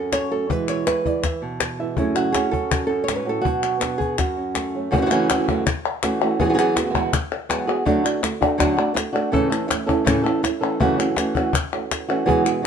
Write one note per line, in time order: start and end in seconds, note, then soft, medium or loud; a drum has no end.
0.00 0.49 F#2 medium
0.00 0.47 C#4 medium
0.00 0.47 F#4 soft
0.00 0.30 A4 medium
0.12 0.49 C#5 medium
0.12 cajon slap loud
0.12 clap medium
0.31 0.49 F#3 soft
0.31 0.49 A3 soft
0.31 0.48 C#4 soft
0.31 0.48 F#4 soft
0.31 0.50 A4 medium
0.31 cajon slap soft
0.49 0.85 E2 medium
0.49 0.85 B2 medium
0.49 0.85 E3 medium
0.49 1.97 E3 medium
0.49 0.86 G#3 medium
0.49 0.86 B3 medium
0.49 0.86 E4 medium
0.49 0.86 B4 loud
0.49 cajon bass loud
0.68 1.06 C#5 loud
0.68 clap medium
0.87 1.04 E3 soft
0.87 1.04 G#3 soft
0.87 1.05 B3 medium
0.87 1.95 E4 medium
0.87 1.04 E4 medium
0.87 1.42 B4 medium
0.87 cajon slap medium
0.87 clap medium
1.05 1.23 E3 soft
1.05 1.23 G#3 soft
1.05 1.23 B3 soft
1.05 1.23 E4 soft
1.05 1.25 D5 medium
1.05 cajon bass medium
1.24 1.79 E5 loud
1.24 muted nylon-string guitar stroke medium
1.24 cajon bass loud
1.24 cajon slap soft
1.24 clap medium
1.42 1.97 B2 medium
1.60 cajon slap medium
1.60 clap medium
1.79 1.97 E3 soft
1.79 1.97 G#3 soft
1.79 1.97 B3 soft
1.79 1.96 E4 soft
1.79 1.95 E5 soft
1.97 2.33 F#2 medium
1.97 2.88 F#2 medium
1.97 2.33 C#3 medium
1.97 2.32 F#3 medium
1.97 2.33 A3 medium
1.97 2.32 C#4 medium
1.97 2.34 C#4 medium
1.97 2.53 E4 medium
1.97 2.34 F#4 medium
1.97 cajon bass medium
2.15 2.70 F#4 medium
2.15 clap medium
2.32 2.51 F#3 soft
2.32 2.51 A3 soft
2.32 3.42 C#4 medium
2.32 2.51 C#4 soft
2.32 2.51 F#4 medium
2.32 2.51 G#4 medium
2.32 cajon slap loud
2.32 clap medium
2.51 2.70 F#3 soft
2.51 2.70 A3 soft
2.51 2.70 C#4 soft
2.51 2.70 F#4 soft
2.51 2.86 A4 loud
2.51 cajon bass medium
2.70 3.42 F#4 soft
2.70 muted nylon-string guitar stroke medium
2.70 cajon bass loud
2.70 clap medium
2.87 3.07 F#2 medium
2.87 3.15 A4 medium
3.04 3.25 G#2 medium
3.04 3.41 C#5 loud
3.08 cajon slap medium
3.08 clap medium
3.16 3.29 B4 medium
3.25 3.44 A2 medium
3.25 3.44 F#3 soft
3.25 3.44 A3 soft
3.25 3.44 C#4 soft
3.25 3.43 F#4 medium
3.25 3.43 A4 medium
3.25 cajon slap soft
3.42 4.18 B2 medium
3.42 3.81 B2 medium
3.42 3.81 F#3 medium
3.42 4.17 F#4 loud
3.42 cajon bass loud
3.46 3.81 B3 medium
3.46 3.81 D4 medium
3.46 3.82 F#4 medium
3.63 3.79 B3 soft
3.63 clap medium
3.80 3.99 F#3 soft
3.80 4.15 B3 medium
3.80 4.00 B3 soft
3.80 3.99 D4 medium
3.80 3.98 F#4 medium
3.80 cajon slap loud
3.80 clap medium
3.98 4.18 B3 soft
3.98 4.18 D4 soft
3.98 4.17 F#4 soft
3.98 4.17 G#4 medium
3.98 cajon bass medium
4.18 4.90 F#2 medium
4.18 4.91 F#4 medium
4.18 muted nylon-string guitar stroke medium
4.18 cajon bass loud
4.18 cajon slap soft
4.18 clap medium
4.37 4.91 C#4 soft
4.54 4.89 A3 medium
4.54 cajon slap medium
4.54 clap medium
4.75 4.92 F#3 soft
4.75 4.92 A3 soft
4.75 4.92 C#4 soft
4.75 4.92 F#4 soft
4.75 cajon slap soft
4.91 5.09 F#2 medium
4.91 5.10 F#2 medium
4.91 4.96 C#3 medium
4.91 5.10 C#3 medium
4.91 4.96 E3 medium
4.91 5.10 E3 medium
4.91 4.96 A3 medium
4.91 5.10 A3 medium
4.91 4.97 C#4 medium
4.91 5.10 C#4 medium
4.91 4.97 F#4 loud
4.91 5.09 F#4 medium
4.91 cajon bass loud
4.97 5.00 C#3 medium
4.97 5.01 E3 medium
4.97 5.01 A3 medium
4.97 5.01 C#4 medium
4.97 5.01 F#4 medium
5.02 5.05 C#3 medium
5.02 5.05 E3 medium
5.02 5.06 A3 medium
5.02 5.05 C#4 medium
5.02 5.06 F#4 medium
5.06 5.09 C#3 medium
5.06 5.10 E3 medium
5.06 5.10 A3 medium
5.06 5.10 C#4 medium
5.06 5.10 F#4 medium
5.10 5.28 F#2 medium
5.10 5.28 C#3 medium
5.10 5.28 E3 medium
5.10 5.29 E3 soft
5.10 5.28 A3 medium
5.10 5.29 A3 soft
5.10 5.29 C#4 medium
5.10 5.29 C#4 soft
5.10 5.28 F#4 medium
5.10 clap medium
5.29 5.65 E3 medium
5.29 5.38 E3 soft
5.29 5.66 A3 soft
5.29 5.38 A3 soft
5.29 5.65 C#4 medium
5.29 5.38 C#4 soft
5.29 5.65 F#4 medium
5.29 5.39 F#4 soft
5.29 cajon slap loud
5.29 clap medium
5.39 5.42 C#3 soft
5.39 5.43 E3 soft
5.39 5.43 A3 soft
5.39 5.43 C#4 soft
5.39 5.43 F#4 soft
5.43 5.47 C#3 medium
5.43 5.47 E3 medium
5.43 5.47 A3 medium
5.43 5.47 C#4 medium
5.43 5.48 F#4 medium
5.48 5.65 F#2 medium
5.48 5.65 C#3 medium
5.48 5.65 E3 medium
5.48 5.66 A3 medium
5.48 5.66 C#4 medium
5.48 5.66 F#4 medium
5.48 cajon bass medium
5.67 muted nylon-string guitar stroke medium
5.67 cajon bass loud
5.67 clap medium
5.86 clap medium
6.03 6.20 E3 medium
6.03 6.21 E3 medium
6.03 6.21 A3 medium
6.03 6.20 A3 medium
6.03 6.21 C#4 medium
6.03 6.20 C#4 medium
6.03 6.19 F#4 medium
6.03 6.20 F#4 medium
6.03 cajon slap loud
6.03 clap medium
6.20 6.38 E3 soft
6.20 6.39 A3 soft
6.20 6.39 A3 medium
6.20 6.39 C#4 soft
6.20 6.39 C#4 medium
6.20 6.38 F#4 soft
6.20 6.39 F#4 medium
6.20 cajon slap soft
6.20 clap soft
6.39 6.57 E2 medium
6.39 6.57 B2 medium
6.39 6.57 E3 medium
6.39 6.56 E3 medium
6.39 6.44 F#3 loud
6.39 6.57 G#3 medium
6.39 6.57 B3 medium
6.39 6.44 B3 medium
6.39 6.57 F#4 medium
6.39 6.44 F#4 medium
6.39 6.45 G#4 medium
6.39 cajon bass loud
6.45 6.48 F#3 medium
6.45 6.48 B3 medium
6.45 6.49 F#4 medium
6.45 6.49 G#4 medium
6.49 6.52 F#3 medium
6.49 6.53 B3 medium
6.49 6.53 F#4 medium
6.49 6.53 G#4 medium
6.53 6.57 F#3 medium
6.53 6.58 B3 medium
6.53 6.58 F#4 medium
6.53 6.58 G#4 medium
6.58 6.75 E3 medium
6.58 6.76 F#3 medium
6.58 6.76 G#3 soft
6.58 6.76 B3 medium
6.58 6.76 F#4 medium
6.58 6.76 G#4 medium
6.58 clap medium
6.76 6.80 E3 soft
6.76 6.81 G#3 soft
6.76 6.81 B3 soft
6.76 7.12 B3 soft
6.76 6.81 F#4 medium
6.76 7.13 F#4 medium
6.76 7.13 G#4 medium
6.76 cajon slap loud
6.76 clap medium
6.81 6.84 B2 soft
6.81 6.84 E3 soft
6.81 6.85 G#3 medium
6.81 6.85 B3 soft
6.81 6.85 F#4 medium
6.85 6.89 B2 medium
6.85 6.89 E3 medium
6.85 6.89 G#3 medium
6.85 6.89 B3 medium
6.85 6.90 F#4 medium
6.90 6.93 B2 medium
6.90 6.94 E3 medium
6.90 6.94 G#3 medium
6.90 6.94 B3 medium
6.90 6.94 F#4 medium
6.94 7.12 E2 medium
6.94 7.12 B2 medium
6.94 7.12 E3 medium
6.94 7.13 G#3 medium
6.94 7.13 B3 medium
6.94 7.13 F#4 medium
6.94 cajon bass medium
7.13 muted nylon-string guitar stroke medium
7.13 cajon bass loud
7.13 clap medium
7.32 clap soft
7.49 7.67 E3 medium
7.49 7.67 F#3 medium
7.49 7.67 G#3 medium
7.49 7.67 B3 medium
7.49 7.67 F#4 medium
7.49 7.66 F#4 medium
7.49 7.66 G#4 medium
7.49 cajon slap medium
7.49 clap medium
7.67 7.85 E3 soft
7.67 7.86 G#3 soft
7.67 7.86 B3 soft
7.67 7.85 F#4 soft
7.67 7.86 F#4 soft
7.67 7.85 G#4 medium
7.67 cajon slap soft
7.67 clap medium
7.85 8.04 D3 medium
7.85 8.21 D3 medium
7.85 8.04 F#3 medium
7.85 8.04 A3 loud
7.85 8.23 A3 medium
7.85 8.04 D4 medium
7.85 8.23 D4 medium
7.85 8.03 F#4 medium
7.85 8.23 F#4 medium
7.85 cajon bass loud
8.04 8.23 A3 soft
8.04 8.22 D4 medium
8.04 8.22 F#4 medium
8.04 cajon slap soft
8.04 clap medium
8.22 8.41 D3 medium
8.22 8.41 A3 medium
8.22 8.41 D4 medium
8.22 8.40 F#4 medium
8.22 muted nylon-string guitar stroke medium
8.22 cajon slap loud
8.22 clap medium
8.41 8.57 A3 soft
8.41 8.58 A3 soft
8.41 8.58 D4 medium
8.41 8.58 D4 soft
8.41 8.58 F#4 medium
8.41 8.59 F#4 medium
8.41 cajon bass medium
8.58 8.77 D3 medium
8.58 8.77 F#3 medium
8.58 8.77 A3 loud
8.58 8.76 D4 loud
8.58 8.75 F#4 medium
8.58 muted nylon-string guitar stroke medium
8.58 cajon bass loud
8.58 cajon slap soft
8.58 clap medium
8.77 8.93 A3 medium
8.77 8.96 A3 soft
8.77 8.93 D4 medium
8.77 8.96 D4 soft
8.77 8.94 F#4 medium
8.77 8.95 F#4 soft
8.94 9.33 A3 soft
8.94 9.33 D4 soft
8.94 9.33 F#4 medium
8.94 muted nylon-string guitar stroke medium
8.94 cajon slap loud
8.94 clap medium
9.13 9.31 A3 soft
9.13 9.32 D4 medium
9.13 9.32 F#4 medium
9.13 cajon slap soft
9.13 clap soft
9.31 9.50 A2 medium
9.31 9.70 A2 medium
9.31 9.51 C#3 medium
9.31 9.50 E3 medium
9.31 9.69 E3 medium
9.31 9.50 A3 medium
9.31 9.70 A3 medium
9.31 9.49 C#4 loud
9.31 9.70 C#4 medium
9.31 9.70 E4 medium
9.31 9.48 A4 loud
9.31 cajon bass medium
9.50 9.67 E3 soft
9.50 9.67 A3 medium
9.50 9.68 C#4 medium
9.50 9.67 A4 medium
9.50 clap medium
9.68 9.88 E3 soft
9.68 9.89 A3 medium
9.68 9.89 C#4 medium
9.68 9.88 E4 medium
9.68 muted nylon-string guitar stroke medium
9.68 cajon slap loud
9.68 clap medium
9.87 10.05 E3 soft
9.87 10.05 A3 medium
9.87 10.07 A3 soft
9.87 10.05 C#4 medium
9.87 10.07 C#4 soft
9.87 10.07 E4 soft
9.87 10.06 A4 medium
9.87 cajon bass medium
9.87 clap medium
10.05 10.24 A2 medium
10.05 10.24 C#3 medium
10.05 10.24 E3 medium
10.05 10.23 A3 medium
10.05 10.23 C#4 loud
10.05 10.22 A4 medium
10.05 muted nylon-string guitar stroke medium
10.05 cajon bass loud
10.05 clap medium
10.24 10.42 E3 soft
10.24 10.42 A3 soft
10.24 10.44 A3 soft
10.24 10.43 C#4 medium
10.24 10.44 C#4 soft
10.24 10.43 E4 soft
10.24 10.43 A4 medium
10.24 clap medium
10.43 10.80 A3 soft
10.43 10.80 C#4 soft
10.43 10.80 E4 medium
10.43 muted nylon-string guitar stroke medium
10.43 cajon slap loud
10.43 clap medium
10.61 10.79 E3 soft
10.61 10.79 A3 soft
10.61 10.80 C#4 medium
10.61 10.79 A4 medium
10.61 cajon slap soft
10.61 clap medium
10.80 10.98 F#2 medium
10.80 11.17 F#2 medium
10.80 10.98 C#3 medium
10.80 11.17 C#3 medium
10.80 10.99 E3 medium
10.80 11.16 E3 medium
10.80 10.98 A3 medium
10.80 11.16 A3 medium
10.80 10.97 C#4 medium
10.80 11.17 C#4 medium
10.80 10.97 F#4 loud
10.80 11.17 F#4 medium
10.80 cajon bass loud
10.98 11.16 E3 soft
10.98 11.16 A3 soft
10.98 11.17 C#4 medium
10.98 11.17 F#4 medium
10.98 clap medium
11.16 11.35 E3 medium
11.16 11.54 E3 soft
11.16 11.35 A3 medium
11.16 11.53 A3 soft
11.16 11.35 C#4 medium
11.16 11.54 C#4 soft
11.16 11.34 F#4 medium
11.16 11.54 F#4 medium
11.16 cajon slap loud
11.16 clap medium
11.35 11.53 E3 soft
11.35 11.53 A3 medium
11.35 11.53 C#4 medium
11.35 11.53 F#4 medium
11.35 cajon bass medium
11.35 clap medium
11.53 muted nylon-string guitar stroke medium
11.53 cajon bass loud
11.53 clap medium
11.73 12.10 E3 soft
11.73 12.09 A3 soft
11.73 12.09 C#4 soft
11.73 12.08 F#4 soft
11.91 cajon slap loud
11.91 clap medium
12.09 12.24 E3 soft
12.09 12.26 E3 soft
12.09 12.26 A3 medium
12.09 12.27 A3 soft
12.09 12.26 C#4 medium
12.09 12.28 C#4 soft
12.09 12.25 F#4 medium
12.09 12.27 F#4 soft
12.09 cajon slap soft
12.09 clap medium
12.26 12.64 E2 medium
12.26 12.64 B2 medium
12.26 12.45 E3 medium
12.26 12.63 E3 medium
12.26 12.45 F#3 medium
12.26 12.64 G#3 medium
12.26 12.45 B3 medium
12.26 12.64 B3 medium
12.26 12.44 F#4 medium
12.26 12.65 F#4 medium
12.26 12.43 G#4 loud
12.26 cajon bass loud
12.45 12.62 B3 soft
12.45 12.63 F#4 medium
12.45 12.63 G#4 medium
12.45 cajon slap soft
12.45 clap medium
12.62 12.67 F#3 medium
12.62 12.67 B3 medium
12.62 12.67 F#4 medium